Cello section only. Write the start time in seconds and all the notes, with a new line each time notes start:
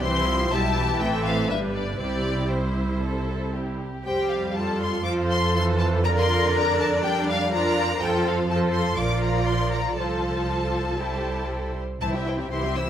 0.02 C3
0.51 B2
0.99 A2
1.49 G2
2.00 C3
4.05 G4
4.56 F4
5.55 A4
6.05 A#4
7.04 D4
7.53 F4
8.02 A4
8.51 A4
8.99 F4
9.97 A4
12.01 E4
12.51 G4